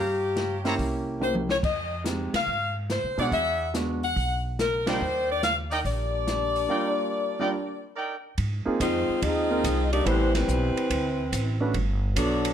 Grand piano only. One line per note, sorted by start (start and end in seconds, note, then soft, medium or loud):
0.64 1.18 A#3 medium
0.64 1.18 C#4 medium
0.64 1.18 E4 medium
0.64 1.18 G4 medium
1.20 1.46 A#3 soft
1.20 1.47 C#4 soft
1.20 1.47 E4 soft
1.20 1.47 G4 medium
2.04 2.30 G#3 soft
2.04 2.31 C4 soft
2.04 2.31 D#4 soft
2.04 2.31 G4 medium
3.18 3.30 G#3 medium
3.18 3.31 B3 soft
3.18 3.31 D4 soft
3.18 3.31 F#4 medium
3.74 4.00 G#3 medium
3.74 4.00 B3 soft
3.74 4.00 D4 soft
3.74 4.00 F#4 medium
4.86 4.99 G3 medium
4.86 4.99 A#3 soft
4.86 4.99 D4 medium
4.86 4.99 F4 medium
6.69 7.34 G3 medium
6.69 7.34 A#3 soft
6.69 7.34 D4 soft
6.69 7.34 F4 medium
7.39 7.52 G3 medium
7.39 7.52 A#3 medium
7.39 7.52 D4 medium
7.39 7.53 F4 medium
8.65 8.78 A#3 medium
8.65 8.78 C4 medium
8.65 8.78 D#4 medium
8.65 8.79 F4 medium
8.65 8.79 G#4 medium
9.50 9.63 A#3 medium
9.50 9.63 C4 medium
9.50 9.63 D#4 medium
9.50 9.63 F4 medium
9.50 9.63 A#4 medium
10.05 10.31 A3 medium
10.05 10.31 C4 medium
10.05 10.31 E4 medium
10.05 10.32 G4 medium
10.05 10.32 B4 medium
11.60 11.73 A3 medium
11.60 11.73 C#4 soft
11.60 11.73 D4 medium
11.60 11.73 F#4 soft
11.60 11.73 B4 medium